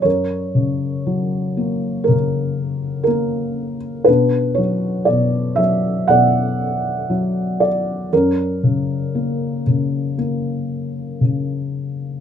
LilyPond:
<<
  \new Staff \with { instrumentName = "Felt piano" } { \time 4/4 \key fis \phrygian \tempo 4 = 59 << { cis''2 ais'4 ais'8. r16 | b'8 cis''8 d''8 e''8 fis''4. d''8 | ais'4. r2 r8 | } \\ { ais'2 cis'2 | d'2 d''2 | cis'2 r2 | } >> }
  \new Staff \with { instrumentName = "Felt piano" } { \clef bass \time 4/4 \key fis \phrygian fis,8 cis8 fis8 ais8 cis4 ais4 | b,8 fis8 b,8 fis8 b,4 fis4 | fis,8 cis8 ais8 cis8 ais4 cis4 | }
>>